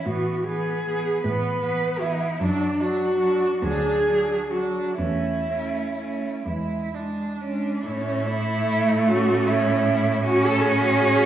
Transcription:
cello
0.06 A2 E3 B3 F#4
0.45 E3 B3 G#4
0.86 E3 B3
1.24 A2 E3 B3 B4
1.62 E3 B3
2.00 E3 B3 E4
2.41 F#2 F#3 D4
2.79 F#3 D4 F#4
3.19 F#3 D4
3.61 D2 F#3 D4 G#4
4.06 F#3 D4
4.51 F#3 D4 F#4
4.98 E2 A3 C#4 E4
5.48 A3 C#4
5.97 A3 C#4
6.46 E2 G#3 E4
6.95 G#3 D4
7.41 G#3 C#4 D4
7.86 A2 A3 C#4 E4
8.27 E4
9.07 C#4 F#4
9.47 E4
10.25 C#4 F#4
10.46 A4
10.62 G#4

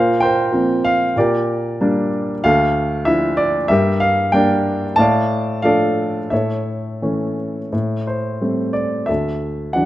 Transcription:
grand piano
Already playing: A#2 A#4 C5 F5
0.20 A#4 C5 G5
0.52 F3 A#3 C4
0.84 F5
1.16 A#2 G4 A#4 D5
1.81 G3 A#3 D4
2.44 D2 A4 F5
3.05 F3 D4 E4 E5
3.37 D5
3.68 G2 G4 A#4 E5
4.00 F5
4.32 G3 A#3 D4 A#4 D5 G5
4.96 A2 F5 A5
5.00 D5
5.62 F3 A3 D4 A4 D5 F5
6.30 A2 A4 C#5 E5
7.02 E3 A3 C#4
7.73 A2
8.07 C5
8.41 G3 A3 C4
8.73 D5
9.06 D2 A4 E5
9.73 E3 F#3 D4 F#5

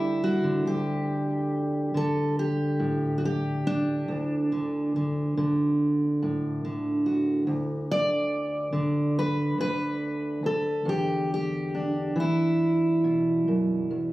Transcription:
steel-string acoustic guitar
Already playing: D2 D3 G3 E4 G4
0.23 G3 F#4
0.44 D3
0.65 D2 G4
1.94 D3 A4
2.39 G4
2.79 A2
3.18 F#4
3.25 G4
3.67 D4
4.08 D2
4.52 D3
4.96 D3
5.37 D3
6.22 A2
6.65 D3
7.06 F#4
7.47 D2
7.91 D5
8.73 D3
9.19 B4
9.58 D2 B4
10.44 D2 A4
10.85 E2 G4
11.34 G4
11.75 D4
12.16 E3
12.20 E4
13.04 B2
13.48 F#2
13.91 E2

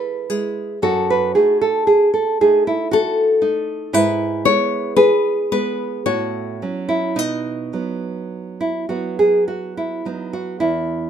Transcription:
nylon-string guitar
Already playing: G#3 E4 A4 B4
0.30 G#3 E4 G#4
0.82 F#2 F#4 A4
1.10 B4
1.35 A3 D#4 G#4
1.61 A4
1.87 G#4
2.14 A4
2.41 A3 D#4 G#4
2.67 E4
2.91 F#4 A4
3.42 A3 D#4
3.93 G#2 E4 B4
4.45 G#3 B3 C#5
4.96 G#4 B4
5.52 G#3 B3 B4
6.06 A2 F#4 C#5
6.62 F#3 C#4
6.89 E4
7.16 B2 D#4 D#5
7.73 F#3 B3
8.61 E4
8.89 F#3 B3 F#4
9.19 G#4
9.48 F#4
9.77 E4
10.05 F#3 B3 D#4
10.33 F#4
10.60 E2 E4

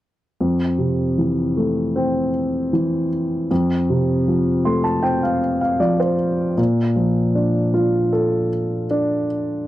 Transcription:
grand piano
0.41 F2
0.78 C3
1.18 E3
1.57 A3
1.96 C4
2.73 E3
3.51 F2
3.90 C3
4.28 F3
4.65 A3 C6
4.84 A5
5.03 C4 G5
5.23 F5
5.61 F5
5.80 F3 D5
6.00 C5
6.57 A#2
6.96 F3
7.35 D4
7.74 F4
8.13 A4
8.91 D4

